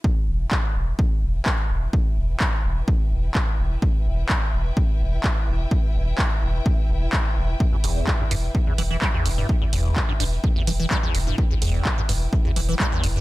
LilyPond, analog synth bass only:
\new Staff \with { instrumentName = "Analog synth bass" } { \clef bass \time 4/4 \key e \minor \tempo 4 = 127 r8 e,,8 r8 e,,8 r8 e,,8 r8 e,,8 | r8 e,,8 r8 e,,8 r8 e,,8 r8 e,,8 | r8 e,,8 r8 e,,8 r8 e,,8 r8 e,,8 | r8 e,,8 r8 e,,8 r8 e,,8 r8 e,,8 |
r8 e,,8 r8 e,,8 r8 e,,8 r8 e,,8 | r8 e,,8 r8 e,,8 r8 e,,8 r8 e,,8 | r8 e,,8 r8 e,,8 r8 e,,8 r8 e,,8 | }